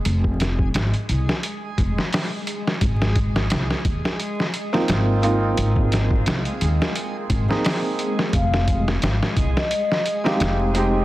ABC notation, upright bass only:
X:1
M:4/4
L:1/8
Q:"Swing 16ths" 1/4=87
K:Fm
V:1 name="Upright bass" clef=bass
F,,,2 A,,, C,, z F,,, z2 | A,,,2 C,, E,, z2 A,,,2 | A,,,2 C,, E,, z A,,, z2 | F,,,2 A,,, C,, z2 F,,,2 |]